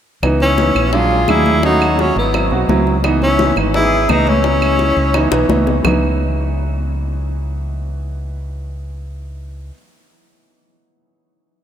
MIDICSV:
0, 0, Header, 1, 6, 480
1, 0, Start_track
1, 0, Key_signature, 4, "minor"
1, 0, Tempo, 351288
1, 318, Time_signature, 4, 2, 24, 8
1, 15904, End_track
2, 0, Start_track
2, 0, Title_t, "Flute"
2, 0, Program_c, 0, 73
2, 562, Note_on_c, 0, 64, 75
2, 1279, Note_on_c, 0, 68, 77
2, 1300, Note_off_c, 0, 64, 0
2, 1759, Note_off_c, 0, 68, 0
2, 1759, Note_on_c, 0, 68, 73
2, 2238, Note_off_c, 0, 68, 0
2, 2246, Note_on_c, 0, 66, 73
2, 2726, Note_off_c, 0, 66, 0
2, 2726, Note_on_c, 0, 66, 62
2, 2961, Note_off_c, 0, 66, 0
2, 2967, Note_on_c, 0, 64, 54
2, 3408, Note_off_c, 0, 64, 0
2, 4408, Note_on_c, 0, 64, 80
2, 4847, Note_off_c, 0, 64, 0
2, 5124, Note_on_c, 0, 68, 84
2, 5601, Note_off_c, 0, 68, 0
2, 5601, Note_on_c, 0, 68, 72
2, 5833, Note_on_c, 0, 64, 69
2, 5854, Note_off_c, 0, 68, 0
2, 7510, Note_off_c, 0, 64, 0
2, 15904, End_track
3, 0, Start_track
3, 0, Title_t, "Tenor saxophone"
3, 0, Program_c, 1, 66
3, 571, Note_on_c, 1, 61, 87
3, 1281, Note_on_c, 1, 65, 90
3, 1302, Note_off_c, 1, 61, 0
3, 1778, Note_on_c, 1, 64, 97
3, 1799, Note_off_c, 1, 65, 0
3, 2248, Note_off_c, 1, 64, 0
3, 2261, Note_on_c, 1, 63, 95
3, 2738, Note_on_c, 1, 61, 85
3, 2758, Note_off_c, 1, 63, 0
3, 2967, Note_off_c, 1, 61, 0
3, 2982, Note_on_c, 1, 59, 67
3, 3416, Note_off_c, 1, 59, 0
3, 4412, Note_on_c, 1, 61, 88
3, 4849, Note_off_c, 1, 61, 0
3, 5122, Note_on_c, 1, 64, 91
3, 5604, Note_on_c, 1, 63, 88
3, 5624, Note_off_c, 1, 64, 0
3, 5851, Note_on_c, 1, 61, 93
3, 5871, Note_off_c, 1, 63, 0
3, 7519, Note_off_c, 1, 61, 0
3, 15904, End_track
4, 0, Start_track
4, 0, Title_t, "Grand piano"
4, 0, Program_c, 2, 0
4, 312, Note_on_c, 2, 52, 82
4, 317, Note_on_c, 2, 59, 72
4, 321, Note_on_c, 2, 63, 87
4, 651, Note_off_c, 2, 52, 0
4, 654, Note_off_c, 2, 59, 0
4, 656, Note_off_c, 2, 63, 0
4, 793, Note_on_c, 2, 52, 71
4, 798, Note_on_c, 2, 59, 64
4, 802, Note_on_c, 2, 63, 82
4, 964, Note_off_c, 2, 52, 0
4, 966, Note_off_c, 2, 59, 0
4, 968, Note_off_c, 2, 63, 0
4, 1032, Note_on_c, 2, 52, 58
4, 1037, Note_on_c, 2, 59, 50
4, 1042, Note_on_c, 2, 61, 64
4, 1203, Note_off_c, 2, 52, 0
4, 1206, Note_off_c, 2, 59, 0
4, 1208, Note_off_c, 2, 61, 0
4, 1274, Note_on_c, 2, 54, 67
4, 1278, Note_on_c, 2, 56, 64
4, 1281, Note_on_c, 2, 62, 79
4, 1612, Note_off_c, 2, 54, 0
4, 1614, Note_off_c, 2, 56, 0
4, 1615, Note_off_c, 2, 62, 0
4, 1755, Note_on_c, 2, 54, 68
4, 1759, Note_on_c, 2, 56, 71
4, 1766, Note_on_c, 2, 62, 72
4, 2218, Note_off_c, 2, 54, 0
4, 2238, Note_off_c, 2, 56, 0
4, 2238, Note_on_c, 2, 54, 76
4, 2242, Note_off_c, 2, 62, 0
4, 2243, Note_on_c, 2, 57, 63
4, 2246, Note_on_c, 2, 61, 76
4, 3005, Note_off_c, 2, 54, 0
4, 3007, Note_off_c, 2, 57, 0
4, 3009, Note_off_c, 2, 61, 0
4, 3195, Note_on_c, 2, 54, 64
4, 3195, Note_on_c, 2, 60, 62
4, 3201, Note_on_c, 2, 64, 75
4, 3363, Note_off_c, 2, 54, 0
4, 3363, Note_off_c, 2, 60, 0
4, 3366, Note_off_c, 2, 64, 0
4, 3433, Note_on_c, 2, 54, 79
4, 3439, Note_on_c, 2, 60, 67
4, 3441, Note_on_c, 2, 66, 80
4, 3602, Note_off_c, 2, 54, 0
4, 3605, Note_off_c, 2, 60, 0
4, 3606, Note_off_c, 2, 66, 0
4, 3678, Note_on_c, 2, 54, 92
4, 3680, Note_on_c, 2, 60, 77
4, 3687, Note_on_c, 2, 64, 90
4, 4012, Note_off_c, 2, 54, 0
4, 4013, Note_off_c, 2, 60, 0
4, 4016, Note_off_c, 2, 64, 0
4, 4156, Note_on_c, 2, 52, 83
4, 4162, Note_on_c, 2, 59, 82
4, 4166, Note_on_c, 2, 63, 99
4, 4491, Note_off_c, 2, 52, 0
4, 4494, Note_off_c, 2, 59, 0
4, 4496, Note_off_c, 2, 63, 0
4, 4639, Note_on_c, 2, 52, 78
4, 4645, Note_on_c, 2, 59, 64
4, 4648, Note_on_c, 2, 63, 79
4, 4804, Note_off_c, 2, 52, 0
4, 4807, Note_off_c, 2, 59, 0
4, 4808, Note_off_c, 2, 63, 0
4, 4880, Note_on_c, 2, 52, 61
4, 4886, Note_on_c, 2, 59, 55
4, 4890, Note_on_c, 2, 63, 73
4, 5044, Note_off_c, 2, 52, 0
4, 5047, Note_off_c, 2, 59, 0
4, 5049, Note_off_c, 2, 63, 0
4, 5119, Note_on_c, 2, 52, 76
4, 5125, Note_on_c, 2, 59, 70
4, 5129, Note_on_c, 2, 63, 84
4, 5451, Note_off_c, 2, 52, 0
4, 5454, Note_off_c, 2, 59, 0
4, 5456, Note_off_c, 2, 63, 0
4, 5595, Note_on_c, 2, 52, 68
4, 5600, Note_on_c, 2, 59, 67
4, 5604, Note_on_c, 2, 75, 79
4, 6264, Note_off_c, 2, 52, 0
4, 6267, Note_off_c, 2, 59, 0
4, 6269, Note_off_c, 2, 75, 0
4, 7027, Note_on_c, 2, 52, 81
4, 7030, Note_on_c, 2, 59, 72
4, 7035, Note_on_c, 2, 63, 92
4, 7196, Note_off_c, 2, 52, 0
4, 7197, Note_off_c, 2, 59, 0
4, 7200, Note_off_c, 2, 63, 0
4, 7264, Note_on_c, 2, 52, 89
4, 7269, Note_on_c, 2, 59, 76
4, 7272, Note_on_c, 2, 63, 94
4, 7434, Note_off_c, 2, 52, 0
4, 7437, Note_off_c, 2, 59, 0
4, 7439, Note_off_c, 2, 63, 0
4, 7502, Note_on_c, 2, 52, 87
4, 7507, Note_on_c, 2, 59, 80
4, 7513, Note_on_c, 2, 63, 93
4, 7841, Note_off_c, 2, 52, 0
4, 7844, Note_off_c, 2, 59, 0
4, 7846, Note_off_c, 2, 63, 0
4, 7963, Note_on_c, 2, 52, 77
4, 7990, Note_on_c, 2, 59, 69
4, 8018, Note_on_c, 2, 63, 85
4, 13234, Note_off_c, 2, 52, 0
4, 13261, Note_off_c, 2, 59, 0
4, 13289, Note_off_c, 2, 63, 0
4, 15904, End_track
5, 0, Start_track
5, 0, Title_t, "Fingered electric bass"
5, 0, Program_c, 3, 33
5, 306, Note_on_c, 3, 37, 87
5, 982, Note_off_c, 3, 37, 0
5, 1024, Note_on_c, 3, 34, 83
5, 1700, Note_off_c, 3, 34, 0
5, 1744, Note_on_c, 3, 39, 77
5, 2871, Note_off_c, 3, 39, 0
5, 2947, Note_on_c, 3, 32, 83
5, 3397, Note_off_c, 3, 32, 0
5, 3426, Note_on_c, 3, 35, 66
5, 3653, Note_off_c, 3, 35, 0
5, 3663, Note_on_c, 3, 37, 82
5, 4788, Note_off_c, 3, 37, 0
5, 4868, Note_on_c, 3, 32, 84
5, 5539, Note_off_c, 3, 32, 0
5, 5585, Note_on_c, 3, 37, 89
5, 6708, Note_off_c, 3, 37, 0
5, 6783, Note_on_c, 3, 37, 82
5, 7232, Note_off_c, 3, 37, 0
5, 7258, Note_on_c, 3, 35, 68
5, 7486, Note_off_c, 3, 35, 0
5, 7497, Note_on_c, 3, 37, 81
5, 7926, Note_off_c, 3, 37, 0
5, 7981, Note_on_c, 3, 37, 82
5, 13252, Note_off_c, 3, 37, 0
5, 15904, End_track
6, 0, Start_track
6, 0, Title_t, "Drums"
6, 315, Note_on_c, 9, 60, 62
6, 316, Note_on_c, 9, 75, 57
6, 319, Note_on_c, 9, 63, 33
6, 452, Note_off_c, 9, 60, 0
6, 452, Note_off_c, 9, 75, 0
6, 456, Note_off_c, 9, 63, 0
6, 551, Note_on_c, 9, 60, 30
6, 553, Note_on_c, 9, 63, 28
6, 688, Note_off_c, 9, 60, 0
6, 689, Note_off_c, 9, 63, 0
6, 790, Note_on_c, 9, 60, 51
6, 791, Note_on_c, 9, 63, 83
6, 927, Note_off_c, 9, 60, 0
6, 928, Note_off_c, 9, 63, 0
6, 1031, Note_on_c, 9, 60, 33
6, 1033, Note_on_c, 9, 63, 30
6, 1038, Note_on_c, 9, 75, 59
6, 1168, Note_off_c, 9, 60, 0
6, 1170, Note_off_c, 9, 63, 0
6, 1174, Note_off_c, 9, 75, 0
6, 1268, Note_on_c, 9, 60, 59
6, 1271, Note_on_c, 9, 63, 26
6, 1405, Note_off_c, 9, 60, 0
6, 1408, Note_off_c, 9, 63, 0
6, 1512, Note_on_c, 9, 63, 31
6, 1648, Note_off_c, 9, 63, 0
6, 1747, Note_on_c, 9, 63, 81
6, 1748, Note_on_c, 9, 60, 32
6, 1748, Note_on_c, 9, 61, 75
6, 1760, Note_on_c, 9, 75, 62
6, 1884, Note_off_c, 9, 63, 0
6, 1885, Note_off_c, 9, 60, 0
6, 1885, Note_off_c, 9, 61, 0
6, 1897, Note_off_c, 9, 75, 0
6, 1989, Note_on_c, 9, 60, 32
6, 1993, Note_on_c, 9, 63, 74
6, 2126, Note_off_c, 9, 60, 0
6, 2130, Note_off_c, 9, 63, 0
6, 2231, Note_on_c, 9, 60, 63
6, 2367, Note_off_c, 9, 60, 0
6, 2477, Note_on_c, 9, 63, 31
6, 2480, Note_on_c, 9, 60, 31
6, 2482, Note_on_c, 9, 75, 61
6, 2613, Note_off_c, 9, 63, 0
6, 2617, Note_off_c, 9, 60, 0
6, 2619, Note_off_c, 9, 75, 0
6, 2717, Note_on_c, 9, 60, 47
6, 2718, Note_on_c, 9, 63, 50
6, 2854, Note_off_c, 9, 60, 0
6, 2855, Note_off_c, 9, 63, 0
6, 2953, Note_on_c, 9, 63, 33
6, 2958, Note_on_c, 9, 60, 31
6, 3090, Note_off_c, 9, 63, 0
6, 3095, Note_off_c, 9, 60, 0
6, 3192, Note_on_c, 9, 63, 30
6, 3199, Note_on_c, 9, 60, 60
6, 3206, Note_on_c, 9, 75, 54
6, 3329, Note_off_c, 9, 63, 0
6, 3336, Note_off_c, 9, 60, 0
6, 3343, Note_off_c, 9, 75, 0
6, 3429, Note_on_c, 9, 63, 31
6, 3565, Note_off_c, 9, 63, 0
6, 3672, Note_on_c, 9, 63, 75
6, 3681, Note_on_c, 9, 60, 31
6, 3681, Note_on_c, 9, 61, 77
6, 3809, Note_off_c, 9, 63, 0
6, 3818, Note_off_c, 9, 60, 0
6, 3818, Note_off_c, 9, 61, 0
6, 3914, Note_on_c, 9, 63, 31
6, 3920, Note_on_c, 9, 60, 32
6, 4050, Note_off_c, 9, 63, 0
6, 4057, Note_off_c, 9, 60, 0
6, 4154, Note_on_c, 9, 60, 67
6, 4155, Note_on_c, 9, 63, 30
6, 4160, Note_on_c, 9, 75, 60
6, 4291, Note_off_c, 9, 60, 0
6, 4291, Note_off_c, 9, 63, 0
6, 4297, Note_off_c, 9, 75, 0
6, 4394, Note_on_c, 9, 63, 30
6, 4399, Note_on_c, 9, 60, 31
6, 4531, Note_off_c, 9, 63, 0
6, 4536, Note_off_c, 9, 60, 0
6, 4633, Note_on_c, 9, 63, 80
6, 4634, Note_on_c, 9, 60, 50
6, 4770, Note_off_c, 9, 63, 0
6, 4771, Note_off_c, 9, 60, 0
6, 4870, Note_on_c, 9, 60, 29
6, 4876, Note_on_c, 9, 63, 34
6, 4880, Note_on_c, 9, 75, 60
6, 5007, Note_off_c, 9, 60, 0
6, 5013, Note_off_c, 9, 63, 0
6, 5016, Note_off_c, 9, 75, 0
6, 5115, Note_on_c, 9, 60, 64
6, 5121, Note_on_c, 9, 63, 29
6, 5251, Note_off_c, 9, 60, 0
6, 5257, Note_off_c, 9, 63, 0
6, 5357, Note_on_c, 9, 63, 30
6, 5493, Note_off_c, 9, 63, 0
6, 5589, Note_on_c, 9, 60, 29
6, 5589, Note_on_c, 9, 61, 75
6, 5596, Note_on_c, 9, 75, 65
6, 5597, Note_on_c, 9, 63, 78
6, 5725, Note_off_c, 9, 60, 0
6, 5725, Note_off_c, 9, 61, 0
6, 5732, Note_off_c, 9, 75, 0
6, 5733, Note_off_c, 9, 63, 0
6, 5831, Note_on_c, 9, 60, 30
6, 5838, Note_on_c, 9, 63, 72
6, 5968, Note_off_c, 9, 60, 0
6, 5975, Note_off_c, 9, 63, 0
6, 6067, Note_on_c, 9, 60, 64
6, 6079, Note_on_c, 9, 63, 29
6, 6204, Note_off_c, 9, 60, 0
6, 6215, Note_off_c, 9, 63, 0
6, 6311, Note_on_c, 9, 60, 30
6, 6315, Note_on_c, 9, 75, 56
6, 6317, Note_on_c, 9, 63, 30
6, 6448, Note_off_c, 9, 60, 0
6, 6451, Note_off_c, 9, 75, 0
6, 6454, Note_off_c, 9, 63, 0
6, 6547, Note_on_c, 9, 60, 52
6, 6553, Note_on_c, 9, 63, 51
6, 6683, Note_off_c, 9, 60, 0
6, 6690, Note_off_c, 9, 63, 0
6, 6789, Note_on_c, 9, 60, 35
6, 6795, Note_on_c, 9, 63, 34
6, 6925, Note_off_c, 9, 60, 0
6, 6932, Note_off_c, 9, 63, 0
6, 7026, Note_on_c, 9, 60, 67
6, 7028, Note_on_c, 9, 75, 55
6, 7031, Note_on_c, 9, 63, 26
6, 7163, Note_off_c, 9, 60, 0
6, 7165, Note_off_c, 9, 75, 0
6, 7168, Note_off_c, 9, 63, 0
6, 7265, Note_on_c, 9, 60, 82
6, 7402, Note_off_c, 9, 60, 0
6, 7505, Note_on_c, 9, 63, 77
6, 7509, Note_on_c, 9, 60, 81
6, 7641, Note_off_c, 9, 63, 0
6, 7646, Note_off_c, 9, 60, 0
6, 7747, Note_on_c, 9, 61, 70
6, 7747, Note_on_c, 9, 63, 32
6, 7884, Note_off_c, 9, 61, 0
6, 7884, Note_off_c, 9, 63, 0
6, 7986, Note_on_c, 9, 61, 94
6, 7989, Note_on_c, 9, 64, 86
6, 7989, Note_on_c, 9, 75, 79
6, 8123, Note_off_c, 9, 61, 0
6, 8125, Note_off_c, 9, 64, 0
6, 8126, Note_off_c, 9, 75, 0
6, 15904, End_track
0, 0, End_of_file